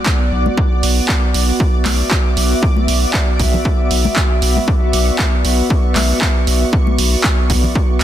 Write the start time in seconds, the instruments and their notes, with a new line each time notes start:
Already playing: ambient pad B3 F#4 D5, analog synth pad D5 F#5
0.06 kick, clap
0.32 analog synth bass B1
0.46 high conga
0.57 analog synth pad D6, kick
0.83 analog synth bass B1, open hi-hat
1.08 ambient pad E5, kick, clap
1.34 analog synth bass B1, open hi-hat
1.60 kick
1.85 analog synth bass B1, clap, open hi-hat, high conga
2.11 kick, clap
2.37 analog synth bass B1, open hi-hat
2.63 kick
2.76 high conga
2.88 analog synth bass B1, open hi-hat
3.14 kick, clap
3.40 analog synth bass B1, kick, open hi-hat
3.54 low conga
3.65 kick
3.91 analog synth bass B1, open hi-hat
4.05 high conga
4.16 kick, clap
4.42 analog synth bass B1, open hi-hat
4.56 high conga
4.68 analog synth pad C#6, kick
4.93 analog synth bass B1, open hi-hat
5.19 kick, clap
5.45 analog synth bass B1, open hi-hat
5.70 kick
5.96 analog synth bass B1, clap, open hi-hat, high conga
6.21 kick, clap
6.47 analog synth bass B1, open hi-hat
6.73 kick
6.87 high conga
6.98 analog synth bass B1, open hi-hat
7.24 kick, clap
7.50 analog synth bass B1, kick, open hi-hat
7.64 low conga
7.75 kick